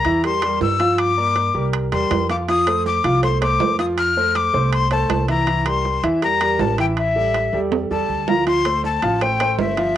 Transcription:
Already playing: flute A#5
0.05 upright bass E2, grand piano E3 E4 E5, high timbale
0.24 grand piano G3 G4 A#4, flute C6, high timbale
0.42 grand piano G3 G4 A#4, high timbale
0.61 upright bass G2, flute E6, low timbale
0.80 grand piano F3 F4 F5, high timbale
0.98 flute D6, high timbale
1.17 grand piano A#3 A#4 D5
1.36 high timbale, low timbale
1.55 upright bass C2, grand piano G3 G4 A#4
1.74 high timbale
1.92 upright bass E2, grand piano G3 G4 A#4, flute C6, high timbale
2.11 upright bass F2, high timbale, low timbale
2.30 grand piano F3 F4 F5, flute D6, high timbale
2.48 grand piano F3 F4 F5, flute D#6, high timbale
2.67 grand piano A3 A4 C5, high timbale
2.86 flute D6, low timbale
3.04 upright bass C2, grand piano F3 F4 F5, high timbale
3.22 grand piano A3 A4 C5, flute C6, high timbale
3.41 grand piano A3 A4 C5, flute D6, high timbale
3.60 upright bass F2, low timbale
3.79 grand piano F3 F4 F5, flute D#6, high timbale
3.98 flute F6, high timbale
4.16 grand piano A3 A4 C5
4.35 flute D6, high timbale, low timbale
4.53 upright bass C2, grand piano A3 A4 C5
4.72 flute C6, high timbale
4.91 grand piano A3 A4 C5, flute A5, high timbale
5.09 upright bass C2, high timbale, low timbale
5.28 grand piano E3 E4 E5, flute A#5, high timbale
5.47 grand piano E3 E4 E5, high timbale
5.66 grand piano G3 G4 A#4, flute C6, high timbale
5.85 low timbale
6.03 upright bass E2, grand piano E3 E4 E5, high timbale
6.22 grand piano G3 G4 A#4, flute A#5, high timbale
6.41 grand piano G3 G4 A#4, high timbale
6.59 upright bass A1, flute A5, low timbale
6.78 grand piano E3 E4 E5, flute G5, high timbale
6.97 flute E5, high timbale
7.16 grand piano G3 G4 A4
7.34 high timbale, low timbale
7.53 upright bass E2, grand piano G3 G4 A4
7.72 high timbale
7.90 upright bass E2, grand piano G3 G4 A4, flute A5
8.09 upright bass D2
8.28 grand piano F3 F4 F5, flute A#5, low timbale
8.46 grand piano F3 F4 F5, flute C6, high timbale
8.65 grand piano A3 A4 C5, high timbale
8.84 flute A5, low timbale
9.02 upright bass A1, grand piano F3 F4 F5, high timbale
9.21 grand piano A3 A4 C5, flute G5, high timbale
9.40 grand piano A3 A4 C5, high timbale
9.58 upright bass G1, flute E5, low timbale
9.77 grand piano F3 F4 F5, high timbale

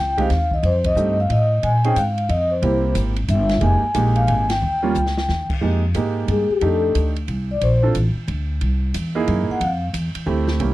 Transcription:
Already playing: upright bass C#2, vibraphone G5
0.18 grand piano G#3 C4 D#4 G4, vibraphone F5, kick, ride
0.30 upright bass D#2, snare, ride
0.51 vibraphone D#5, kick
0.63 upright bass F2, vibraphone C5, ride
0.84 vibraphone D#5, kick, ride
0.95 upright bass G2, grand piano A3 C4 D#4 G4, hi-hat pedal
1.20 vibraphone F5
1.30 upright bass A2, vibraphone D#5, kick, ride
1.63 upright bass A#2, vibraphone G#5, kick, ride
1.84 grand piano C4 C#4 D#4 G#4, vibraphone G5, ride
1.96 upright bass G#2, vibraphone F5, kick, hi-hat pedal, ride
2.18 ride
2.29 upright bass F2, vibraphone D#5, kick, ride
2.51 vibraphone C5
2.62 upright bass C2, grand piano A#3 C4 E4 G4, kick, ride
2.95 upright bass G#1, kick, hi-hat pedal, ride
3.16 ride
3.28 upright bass G1, vibraphone E5, kick, hi-hat pedal, ride
3.49 snare, ride
3.61 upright bass F1, grand piano G#3 A#3 D#4 G4, vibraphone G#5, kick, ride
3.82 muted upright bass stroke
3.94 upright bass A#1, grand piano G#3 A#3 D#4 G4, kick, hi-hat pedal, ride
4.16 vibraphone F5, ride
4.27 upright bass G#1, vibraphone G#5, kick, ride
4.49 vibraphone G5, snare, ride
4.62 upright bass D#2
4.82 grand piano G3 A#3 C#4 F4
4.95 upright bass C#2, hi-hat pedal
5.06 snare
5.18 snare
5.29 upright bass D#2, snare
5.50 muted upright bass stroke, kick, crash
5.61 upright bass F2, grand piano G#3 A#3 D#4 G4
5.94 upright bass G#2, grand piano G#3 A#3 D#4 G4, kick, hi-hat pedal, ride
6.28 upright bass G2, vibraphone G#4, kick, ride
6.49 vibraphone G4, muted upright bass stroke
6.61 upright bass F2, grand piano A3 D4 D#4 G4, vibraphone A4, kick, ride
6.95 upright bass D2, kick, hi-hat pedal, ride
7.16 ride
7.28 upright bass C2, kick, ride
7.51 vibraphone D5
7.61 upright bass A#1, vibraphone C5, kick, ride
7.83 grand piano C4 D4 F4 A4
7.95 upright bass A1, kick, hi-hat pedal, ride
8.16 muted upright bass stroke
8.28 upright bass D2, kick, ride
8.61 upright bass C2, kick, ride
8.94 upright bass E2, kick, hi-hat pedal, ride
9.15 grand piano A#3 D#4 E4 G#4
9.28 upright bass F#2, kick, ride
9.49 vibraphone F#5, muted upright bass stroke
9.60 upright bass F2, vibraphone F5, kick, ride
9.93 upright bass E2, kick, hi-hat pedal, ride
10.15 muted upright bass stroke, ride
10.26 upright bass D2, grand piano A3 C4 E4 G4, kick
10.48 snare
10.60 upright bass C2, grand piano A#3 C#4 E4 G4, kick, ride

